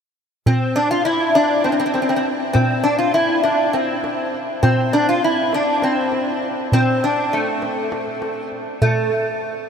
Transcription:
0.46 0.77 C4 medium
0.46 darbuka dum medium
0.76 0.90 D4 medium
0.91 1.05 F4 medium
1.05 1.35 E4 medium
1.35 1.66 D4 medium
1.35 darbuka tek medium
1.64 1.71 C4 medium
1.64 darbuka tek medium
1.72 1.78 C4 medium
1.80 1.84 C4 medium
1.80 darbuka ka soft
1.86 1.93 C4 medium
1.94 2.01 C4 medium
1.94 darbuka tek medium
2.02 2.08 C4 medium
2.09 2.15 C4 medium
2.16 2.24 C4 medium
2.25 darbuka ka soft
2.53 2.85 C4 medium
2.53 darbuka dum medium
2.84 2.98 D4 medium
2.98 3.14 F4 medium
3.14 3.43 E4 medium
3.43 3.74 D4 medium
3.43 darbuka tek medium
3.73 4.36 C4 medium
3.73 darbuka tek medium
3.89 darbuka ka soft
4.04 darbuka tek medium
4.34 darbuka ka soft
4.63 4.94 C4 medium
4.63 darbuka dum medium
4.93 5.08 D4 medium
5.09 5.24 F4 medium
5.24 5.54 E4 medium
5.53 5.84 D4 medium
5.53 darbuka tek medium
5.82 6.46 C4 medium
5.82 darbuka tek medium
5.97 darbuka ka soft
6.12 darbuka tek medium
6.42 darbuka ka soft
6.72 7.03 C4 medium
6.72 darbuka dum medium
7.04 7.34 D4 medium
7.33 8.48 A3 medium
7.62 darbuka tek medium
7.92 darbuka tek medium
8.07 darbuka ka soft
8.22 darbuka tek medium
8.52 darbuka ka soft
8.82 9.09 A3 medium
8.82 darbuka dum medium

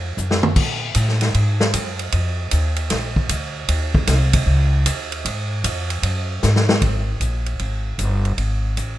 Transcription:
0.00 0.16 F2 medium
0.17 0.55 F#2 medium
0.17 hi-hat pedal medium
0.31 snare medium
0.43 mid tom medium
0.56 0.94 A#2 medium
0.56 kick medium
0.56 crash medium
0.95 1.33 A2 medium
0.95 hi-hat pedal medium
0.95 ride medium
1.09 snare soft
1.21 snare soft
1.21 ride soft
1.34 1.72 G#2 medium
1.34 ride medium
1.60 snare medium
1.74 2.12 F#2 medium
1.74 hi-hat pedal medium
1.74 ride medium
1.99 ride soft
2.12 2.51 F2 medium
2.12 ride medium
2.51 2.90 D#2 medium
2.51 hi-hat pedal medium
2.51 ride medium
2.76 ride soft
2.90 3.29 A#1 medium
2.90 snare soft
2.90 ride medium
3.16 kick medium
3.29 3.68 D2 medium
3.29 hi-hat pedal medium
3.29 ride medium
3.68 4.07 D#2 medium
3.68 ride medium
3.95 kick medium
4.07 4.46 C2 medium
4.07 snare soft
4.07 hi-hat pedal medium
4.07 ride medium
4.33 kick medium
4.33 ride medium
4.46 4.85 C#2 medium
4.86 5.24 D#2 medium
4.86 hi-hat pedal medium
4.86 ride medium
5.12 ride soft
5.25 5.63 G#2 medium
5.25 ride medium
5.64 6.02 F2 medium
5.64 hi-hat pedal medium
5.64 ride medium
5.90 ride soft
6.02 6.41 F#2 medium
6.02 ride medium
6.43 6.81 G#2 medium
6.43 snare soft
6.43 hi-hat pedal medium
6.56 snare medium
6.69 snare medium
6.82 7.20 G#1 medium
6.82 kick medium
6.82 ride medium
7.20 7.59 A#1 medium
7.20 hi-hat pedal medium
7.20 ride medium
7.46 ride soft
7.59 7.98 G#1 medium
7.59 ride soft
7.98 8.37 G1 medium
7.98 hi-hat pedal medium
7.98 ride medium
8.25 ride soft
8.38 8.76 G#1 medium
8.38 ride medium
8.77 8.98 A1 medium
8.77 hi-hat pedal soft
8.77 ride medium

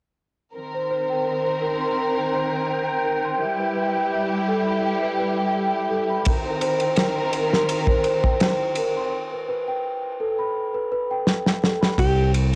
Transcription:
0.55 3.38 D#3 medium
0.55 3.38 C4 medium
0.55 3.38 A#4 medium
0.55 9.12 G5 medium
0.75 0.84 C5 medium
0.91 1.09 C5 medium
1.10 1.60 G5 medium
1.62 1.80 A#4 medium
1.81 2.15 C6 medium
2.17 2.26 C5 medium
2.33 2.51 C5 medium
2.52 3.03 G5 medium
3.05 3.23 A#4 medium
3.25 3.41 C6 medium
3.38 6.22 G3 medium
3.38 6.22 E4 medium
3.38 6.22 G4 medium
3.60 3.69 B4 medium
3.76 3.94 B4 medium
3.95 4.46 G5 medium
4.48 4.66 A4 medium
4.66 5.00 B5 medium
5.03 5.12 B4 medium
5.19 5.37 B4 medium
5.38 5.89 G5 medium
5.90 6.08 A4 medium
6.10 6.27 B5 medium
6.25 9.09 D#3 medium
6.25 9.09 C4 medium
6.25 9.09 A#4 medium
6.25 kick loud
6.25 ride medium
6.46 6.55 C5 medium
6.61 6.80 C5 medium
6.61 ride medium
6.80 7.32 G5 medium
6.80 ride soft
6.96 snare medium
6.96 ride medium
7.33 7.51 A#4 medium
7.33 ride medium
7.53 7.86 C6 medium
7.53 snare soft
7.69 ride medium
7.87 7.98 C5 medium
7.87 kick medium
8.04 8.23 C5 medium
8.04 ride medium
8.24 8.75 G5 medium
8.24 kick medium
8.40 snare loud
8.40 ride medium
8.75 8.95 A#4 medium
8.75 ride medium
8.97 9.13 C6 medium
9.32 9.41 B4 medium
9.48 9.66 B4 medium
9.68 10.18 G5 medium
10.20 10.38 A4 medium
10.39 10.72 B5 medium
10.74 10.84 B4 medium
10.92 11.09 B4 loud
11.11 11.61 G5 medium
11.27 snare medium
11.46 snare medium
11.63 11.80 A4 medium
11.63 snare medium
11.81 11.98 B5 medium
11.81 snare medium
11.98 12.55 C2 medium
11.98 12.31 G4 medium
11.98 kick medium
11.98 ride medium
12.34 ride medium

